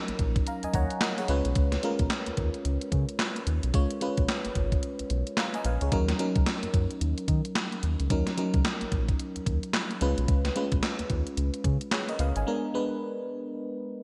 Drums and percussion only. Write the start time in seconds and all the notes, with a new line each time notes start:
0.08 closed hi-hat
0.19 kick, closed hi-hat
0.36 kick, closed hi-hat
0.47 closed hi-hat
0.63 closed hi-hat
0.74 kick, closed hi-hat
0.90 closed hi-hat
1.01 snare, clap, closed hi-hat
1.18 closed hi-hat
1.28 closed hi-hat
1.45 closed hi-hat
1.55 kick, closed hi-hat
1.72 snare, closed hi-hat
1.83 closed hi-hat
1.99 kick, closed hi-hat
2.10 snare, clap, closed hi-hat
2.26 closed hi-hat
2.37 kick, closed hi-hat
2.54 closed hi-hat
2.65 closed hi-hat
2.81 closed hi-hat
2.92 kick, closed hi-hat
3.09 closed hi-hat
3.19 snare, clap, closed hi-hat
3.36 closed hi-hat
3.47 closed hi-hat
3.63 closed hi-hat
3.74 kick, closed hi-hat
3.91 closed hi-hat
4.01 closed hi-hat
4.17 kick, closed hi-hat
4.28 snare, clap, closed hi-hat
4.45 closed hi-hat
4.55 kick, closed hi-hat
4.72 kick, closed hi-hat
4.83 closed hi-hat
4.99 closed hi-hat
5.10 closed hi-hat
5.27 closed hi-hat
5.37 snare, clap, closed hi-hat
5.54 closed hi-hat
5.65 closed hi-hat
5.81 closed hi-hat
5.92 kick, closed hi-hat
6.08 snare, closed hi-hat
6.19 closed hi-hat
6.36 kick, closed hi-hat
6.46 snare, clap, closed hi-hat
6.63 closed hi-hat
6.74 kick, closed hi-hat
6.91 closed hi-hat
7.01 closed hi-hat
7.18 closed hi-hat
7.28 kick, closed hi-hat
7.45 closed hi-hat
7.55 snare, clap, closed hi-hat
7.72 closed hi-hat
7.83 closed hi-hat
8.00 closed hi-hat
8.10 kick, closed hi-hat
8.27 snare, closed hi-hat
8.38 closed hi-hat
8.54 kick, closed hi-hat
8.65 snare, clap, closed hi-hat
8.81 closed hi-hat
8.92 kick, closed hi-hat
9.09 kick, closed hi-hat
9.19 closed hi-hat
9.36 closed hi-hat
9.46 kick, closed hi-hat
9.63 closed hi-hat
9.73 snare, clap, closed hi-hat
9.91 closed hi-hat
10.01 closed hi-hat
10.18 closed hi-hat
10.28 kick, closed hi-hat
10.45 snare, closed hi-hat
10.56 closed hi-hat
10.72 kick, closed hi-hat
10.83 snare, clap, closed hi-hat
10.99 closed hi-hat
11.10 kick, closed hi-hat
11.27 closed hi-hat
11.37 closed hi-hat
11.54 closed hi-hat
11.64 kick, closed hi-hat
11.81 closed hi-hat
11.91 snare, clap, closed hi-hat
12.09 closed hi-hat
12.19 closed hi-hat
12.36 closed hi-hat